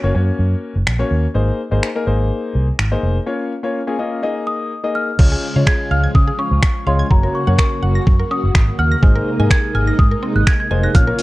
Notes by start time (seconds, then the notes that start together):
0.03 F#1 A#3 C#4 F#4 C#5
0.15 F#2 A#3 C#4 F#4 C#5
0.39 F#2
0.76 F#1
0.87 A#1, finger snap
0.99 A#3 C#4 F#4 C#5
1.11 D#2
1.34 G#1 A#3 D#4 G#4 C5
1.71 G#1 A#3 D#4 G#4 C5
1.83 finger snap
1.95 A#3 D#4 G#4 A#4
2.06 G#1 A#3 D#4 G#4 C5
2.55 C2
2.79 G#1, finger snap
2.91 A#3 D#4 G#4 C5
3.03 F1
3.26 A#3 C#4 F4 C#5
3.63 A#3 C#4 F4 C#5
3.87 A#3 C#4 F4 G#4
3.99 A#3 C#4 F4 D#5
4.23 A#3 D#4 G#4 D#5
4.47 D#6
4.83 A#3 D#4 G#4 D#5
4.95 F6
5.19 C#2 C#3 F3 G#3 C#4 F4 C#5, kick, crash
5.32 G#4
5.55 C#3 G#3 C#4 F4 C#5 F5
5.66 G#4 G#6, finger snap, kick
5.91 C#2 F5 F6
6.04 G#6
6.15 C#3 D#6, kick
6.28 G#4
6.39 C#4 C#6
6.51 C#2
6.63 finger snap, kick
6.87 C#2 G#3 C#4 F4 C#5 F5 C6
6.99 G#6
7.11 F#1 F#3 A#3 C#4 F#4 C#5 A#5, kick
7.23 A#3 C#4 F#4 A#4 C#5
7.35 C#6
7.47 F#2 A#3 C#4 F#4 C#5 F#5
7.59 A#4 C#6, finger snap, kick
7.83 F#1 F#5
7.95 A#6
8.07 F#2, kick
8.20 A#4
8.31 C#4 D#6
8.43 F#1
8.55 G#1, finger snap, kick
8.79 D#2 F#5 F6
8.92 A#6
9.03 G#1 C3 G#3 A#3 D#4 G#4 C5, kick
9.16 A#4
9.39 G#2 A#3 D#4 G#4 D#5 G#5
9.50 A#4 G#6, finger snap, kick
9.75 G#1 G#5 F6
9.87 A#6
9.99 G#2 D#6, kick
10.11 A#4
10.23 C4
10.35 G#1 F#6
10.47 G#6, finger snap, kick
10.60 G#6
10.70 F1 A#3 D#4 G#4 C5 G#5
10.83 F#6 A#6
10.94 A#1 F3 A#3 C#4 F4 C#5 F6, kick, closed hi-hat
11.07 A#3 C#4 F4 A#4 C#5
11.19 open hi-hat